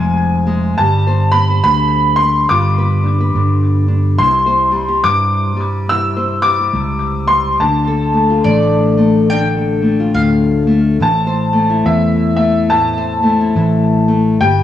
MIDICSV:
0, 0, Header, 1, 5, 480
1, 0, Start_track
1, 0, Tempo, 851064
1, 444, Time_signature, 4, 2, 24, 8
1, 8253, End_track
2, 0, Start_track
2, 0, Title_t, "Upright piano"
2, 0, Program_c, 0, 0
2, 0, Note_on_c, 0, 80, 85
2, 437, Note_on_c, 0, 81, 75
2, 461, Note_off_c, 0, 80, 0
2, 742, Note_on_c, 0, 83, 77
2, 743, Note_off_c, 0, 81, 0
2, 915, Note_off_c, 0, 83, 0
2, 923, Note_on_c, 0, 83, 80
2, 1219, Note_on_c, 0, 84, 76
2, 1227, Note_off_c, 0, 83, 0
2, 1406, Note_on_c, 0, 86, 77
2, 1411, Note_off_c, 0, 84, 0
2, 2157, Note_off_c, 0, 86, 0
2, 2360, Note_on_c, 0, 84, 82
2, 2841, Note_on_c, 0, 86, 89
2, 2858, Note_off_c, 0, 84, 0
2, 3301, Note_off_c, 0, 86, 0
2, 3325, Note_on_c, 0, 88, 91
2, 3622, Note_on_c, 0, 86, 83
2, 3628, Note_off_c, 0, 88, 0
2, 4103, Note_on_c, 0, 84, 82
2, 4115, Note_off_c, 0, 86, 0
2, 4286, Note_on_c, 0, 81, 62
2, 4293, Note_off_c, 0, 84, 0
2, 5224, Note_off_c, 0, 81, 0
2, 6217, Note_on_c, 0, 81, 74
2, 6688, Note_on_c, 0, 76, 65
2, 6706, Note_off_c, 0, 81, 0
2, 6965, Note_off_c, 0, 76, 0
2, 6974, Note_on_c, 0, 76, 66
2, 7162, Note_on_c, 0, 81, 79
2, 7169, Note_off_c, 0, 76, 0
2, 8124, Note_on_c, 0, 79, 77
2, 8153, Note_off_c, 0, 81, 0
2, 8253, Note_off_c, 0, 79, 0
2, 8253, End_track
3, 0, Start_track
3, 0, Title_t, "Mandolin"
3, 0, Program_c, 1, 25
3, 4761, Note_on_c, 1, 74, 70
3, 5221, Note_off_c, 1, 74, 0
3, 5244, Note_on_c, 1, 79, 96
3, 5720, Note_off_c, 1, 79, 0
3, 5722, Note_on_c, 1, 77, 67
3, 6089, Note_off_c, 1, 77, 0
3, 8253, End_track
4, 0, Start_track
4, 0, Title_t, "Nylon-string guitar"
4, 0, Program_c, 2, 24
4, 0, Note_on_c, 2, 48, 60
4, 0, Note_on_c, 2, 53, 63
4, 0, Note_on_c, 2, 56, 57
4, 0, Note_on_c, 2, 60, 55
4, 0, Note_on_c, 2, 68, 52
4, 0, Note_on_c, 2, 72, 65
4, 255, Note_off_c, 2, 56, 0
4, 262, Note_on_c, 2, 56, 62
4, 423, Note_off_c, 2, 53, 0
4, 424, Note_off_c, 2, 48, 0
4, 424, Note_off_c, 2, 56, 0
4, 427, Note_off_c, 2, 72, 0
4, 428, Note_off_c, 2, 68, 0
4, 447, Note_on_c, 2, 55, 58
4, 452, Note_on_c, 2, 67, 57
4, 603, Note_on_c, 2, 72, 54
4, 740, Note_off_c, 2, 60, 0
4, 747, Note_on_c, 2, 60, 56
4, 837, Note_off_c, 2, 72, 0
4, 844, Note_on_c, 2, 72, 49
4, 935, Note_on_c, 2, 50, 57
4, 1223, Note_off_c, 2, 60, 0
4, 1232, Note_on_c, 2, 60, 57
4, 1389, Note_off_c, 2, 72, 0
4, 1410, Note_off_c, 2, 50, 0
4, 1412, Note_off_c, 2, 60, 0
4, 1417, Note_off_c, 2, 55, 0
4, 1419, Note_on_c, 2, 55, 60
4, 1420, Note_off_c, 2, 67, 0
4, 1422, Note_on_c, 2, 65, 49
4, 1569, Note_on_c, 2, 71, 54
4, 1712, Note_on_c, 2, 62, 55
4, 1801, Note_off_c, 2, 71, 0
4, 1808, Note_on_c, 2, 71, 55
4, 1893, Note_on_c, 2, 50, 58
4, 2182, Note_off_c, 2, 62, 0
4, 2189, Note_on_c, 2, 62, 54
4, 2348, Note_off_c, 2, 62, 0
4, 2351, Note_off_c, 2, 71, 0
4, 2352, Note_off_c, 2, 65, 0
4, 2369, Note_off_c, 2, 50, 0
4, 2370, Note_on_c, 2, 48, 67
4, 2376, Note_on_c, 2, 64, 49
4, 2515, Note_on_c, 2, 72, 56
4, 2651, Note_off_c, 2, 55, 0
4, 2658, Note_on_c, 2, 55, 53
4, 2754, Note_on_c, 2, 67, 51
4, 2838, Note_off_c, 2, 48, 0
4, 2845, Note_on_c, 2, 48, 47
4, 3132, Note_off_c, 2, 55, 0
4, 3139, Note_on_c, 2, 55, 52
4, 3321, Note_off_c, 2, 48, 0
4, 3327, Note_off_c, 2, 64, 0
4, 3327, Note_on_c, 2, 48, 60
4, 3334, Note_on_c, 2, 64, 53
4, 3471, Note_off_c, 2, 72, 0
4, 3478, Note_on_c, 2, 72, 56
4, 3619, Note_off_c, 2, 55, 0
4, 3628, Note_on_c, 2, 55, 54
4, 3714, Note_off_c, 2, 67, 0
4, 3720, Note_on_c, 2, 67, 50
4, 3798, Note_off_c, 2, 48, 0
4, 3805, Note_on_c, 2, 48, 55
4, 4092, Note_off_c, 2, 55, 0
4, 4099, Note_on_c, 2, 55, 56
4, 4263, Note_off_c, 2, 48, 0
4, 4267, Note_off_c, 2, 67, 0
4, 4267, Note_off_c, 2, 72, 0
4, 4268, Note_off_c, 2, 64, 0
4, 4286, Note_off_c, 2, 55, 0
4, 4288, Note_on_c, 2, 50, 68
4, 4291, Note_on_c, 2, 62, 49
4, 4441, Note_on_c, 2, 69, 60
4, 4586, Note_on_c, 2, 57, 61
4, 4679, Note_on_c, 2, 65, 41
4, 4764, Note_on_c, 2, 45, 58
4, 5058, Note_off_c, 2, 57, 0
4, 5060, Note_on_c, 2, 57, 53
4, 5239, Note_off_c, 2, 50, 0
4, 5245, Note_off_c, 2, 45, 0
4, 5245, Note_off_c, 2, 62, 0
4, 5246, Note_on_c, 2, 50, 61
4, 5252, Note_on_c, 2, 62, 60
4, 5390, Note_off_c, 2, 69, 0
4, 5397, Note_on_c, 2, 69, 60
4, 5533, Note_off_c, 2, 57, 0
4, 5540, Note_on_c, 2, 57, 51
4, 5631, Note_off_c, 2, 65, 0
4, 5638, Note_on_c, 2, 65, 54
4, 5720, Note_on_c, 2, 45, 60
4, 6011, Note_off_c, 2, 57, 0
4, 6018, Note_on_c, 2, 57, 61
4, 6183, Note_off_c, 2, 57, 0
4, 6186, Note_off_c, 2, 65, 0
4, 6187, Note_off_c, 2, 62, 0
4, 6198, Note_off_c, 2, 45, 0
4, 6205, Note_on_c, 2, 45, 67
4, 6206, Note_off_c, 2, 50, 0
4, 6210, Note_on_c, 2, 60, 59
4, 6353, Note_off_c, 2, 69, 0
4, 6355, Note_on_c, 2, 72, 48
4, 6502, Note_on_c, 2, 57, 59
4, 6597, Note_on_c, 2, 64, 48
4, 6691, Note_on_c, 2, 52, 60
4, 6969, Note_off_c, 2, 57, 0
4, 6976, Note_on_c, 2, 57, 53
4, 7164, Note_off_c, 2, 45, 0
4, 7166, Note_off_c, 2, 60, 0
4, 7170, Note_on_c, 2, 45, 65
4, 7173, Note_on_c, 2, 60, 54
4, 7312, Note_off_c, 2, 72, 0
4, 7318, Note_on_c, 2, 72, 58
4, 7453, Note_off_c, 2, 57, 0
4, 7460, Note_on_c, 2, 57, 59
4, 7555, Note_off_c, 2, 64, 0
4, 7562, Note_on_c, 2, 64, 55
4, 7641, Note_off_c, 2, 52, 0
4, 7648, Note_on_c, 2, 52, 61
4, 7935, Note_off_c, 2, 57, 0
4, 7942, Note_on_c, 2, 57, 63
4, 8105, Note_off_c, 2, 52, 0
4, 8105, Note_off_c, 2, 57, 0
4, 8107, Note_off_c, 2, 72, 0
4, 8128, Note_off_c, 2, 45, 0
4, 8130, Note_off_c, 2, 64, 0
4, 8130, Note_on_c, 2, 55, 60
4, 8133, Note_on_c, 2, 67, 51
4, 8253, Note_off_c, 2, 55, 0
4, 8253, Note_off_c, 2, 60, 0
4, 8253, Note_off_c, 2, 67, 0
4, 8253, End_track
5, 0, Start_track
5, 0, Title_t, "Fingered electric bass"
5, 0, Program_c, 3, 33
5, 0, Note_on_c, 3, 29, 83
5, 421, Note_off_c, 3, 29, 0
5, 446, Note_on_c, 3, 31, 71
5, 903, Note_off_c, 3, 31, 0
5, 927, Note_on_c, 3, 38, 83
5, 1384, Note_off_c, 3, 38, 0
5, 1414, Note_on_c, 3, 31, 76
5, 1867, Note_off_c, 3, 31, 0
5, 1888, Note_on_c, 3, 31, 81
5, 2344, Note_off_c, 3, 31, 0
5, 2360, Note_on_c, 3, 36, 71
5, 2821, Note_off_c, 3, 36, 0
5, 2843, Note_on_c, 3, 43, 83
5, 3782, Note_off_c, 3, 43, 0
5, 3798, Note_on_c, 3, 37, 83
5, 4259, Note_off_c, 3, 37, 0
5, 4284, Note_on_c, 3, 38, 70
5, 4743, Note_off_c, 3, 38, 0
5, 4764, Note_on_c, 3, 33, 92
5, 5703, Note_off_c, 3, 33, 0
5, 5723, Note_on_c, 3, 38, 92
5, 6182, Note_off_c, 3, 38, 0
5, 6201, Note_on_c, 3, 33, 69
5, 6661, Note_off_c, 3, 33, 0
5, 6683, Note_on_c, 3, 40, 89
5, 7622, Note_off_c, 3, 40, 0
5, 7645, Note_on_c, 3, 33, 86
5, 8103, Note_off_c, 3, 33, 0
5, 8125, Note_on_c, 3, 31, 84
5, 8253, Note_off_c, 3, 31, 0
5, 8253, End_track
0, 0, End_of_file